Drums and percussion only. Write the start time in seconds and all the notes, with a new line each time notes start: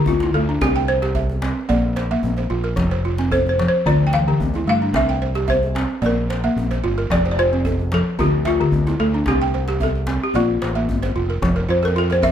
0.06 djembe bass
0.20 djembe slap, djembe tone
0.61 djembe slap, djembe bass
0.76 djembe slap
1.03 djembe slap
1.15 djembe slap, djembe bass
1.30 djembe tone
1.42 djembe slap
1.70 djembe slap, djembe bass
1.97 djembe slap
2.23 djembe bass
2.37 djembe tone
2.50 djembe slap
2.77 djembe slap, djembe bass
3.18 djembe slap
3.32 djembe bass
3.46 djembe tone
3.59 djembe slap
3.74 djembe slap
3.86 djembe bass
4.13 djembe slap
4.40 djembe bass
4.54 djembe tone
4.94 djembe slap, djembe bass
5.35 djembe slap
5.48 djembe bass
5.63 djembe tone
5.76 djembe slap
5.90 djembe slap
6.03 djembe bass
6.30 djembe slap
6.57 djembe bass
6.71 djembe slap, djembe tone
7.11 djembe slap, djembe bass
7.65 djembe bass
7.79 djembe tone
7.92 djembe slap
8.06 djembe slap
8.19 djembe bass
8.45 djembe slap
8.72 djembe bass
8.87 djembe slap, djembe tone
9.26 djembe slap, djembe bass
9.53 djembe slap
9.68 djembe slap
9.80 djembe bass
9.95 djembe tone
10.07 djembe slap
10.34 djembe bass
10.62 djembe slap
10.76 djembe slap
10.89 djembe bass
11.03 djembe slap, djembe tone
11.43 djembe slap, djembe bass
11.85 djembe slap
12.11 djembe tone
12.23 djembe bass